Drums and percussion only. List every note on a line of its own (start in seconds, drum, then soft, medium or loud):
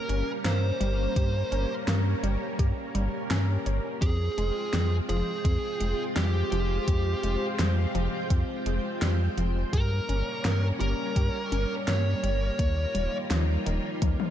0.09 closed hi-hat medium
0.45 snare loud
0.45 closed hi-hat medium
0.81 closed hi-hat medium
1.16 kick loud
1.16 closed hi-hat medium
1.52 closed hi-hat medium
1.88 snare loud
1.88 closed hi-hat medium
2.24 closed hi-hat medium
2.59 kick loud
2.59 closed hi-hat medium
2.95 closed hi-hat medium
3.31 snare loud
3.31 closed hi-hat medium
3.66 closed hi-hat medium
4.02 kick loud
4.02 closed hi-hat medium
4.38 closed hi-hat medium
4.73 snare loud
4.73 closed hi-hat medium
5.09 closed hi-hat medium
5.45 kick loud
5.45 closed hi-hat medium
5.81 closed hi-hat medium
6.16 snare loud
6.16 closed hi-hat medium
6.52 closed hi-hat medium
6.88 kick loud
6.88 closed hi-hat medium
7.23 closed hi-hat medium
7.59 snare loud
7.59 closed hi-hat medium
7.95 closed hi-hat medium
8.30 kick loud
8.30 closed hi-hat medium
8.66 closed hi-hat medium
9.02 snare loud
9.02 closed hi-hat medium
9.38 closed hi-hat medium
9.73 kick loud
9.73 closed hi-hat medium
10.09 closed hi-hat medium
10.45 snare loud
10.45 closed hi-hat medium
10.81 closed hi-hat medium
11.16 kick loud
11.16 closed hi-hat medium
11.52 closed hi-hat medium
11.88 snare loud
11.88 closed hi-hat medium
12.24 closed hi-hat medium
12.59 kick loud
12.59 closed hi-hat loud
12.95 closed hi-hat medium
13.31 snare loud
13.31 closed hi-hat medium
13.66 closed hi-hat medium
14.02 kick loud
14.02 closed hi-hat medium
14.02 high tom medium
14.20 high tom medium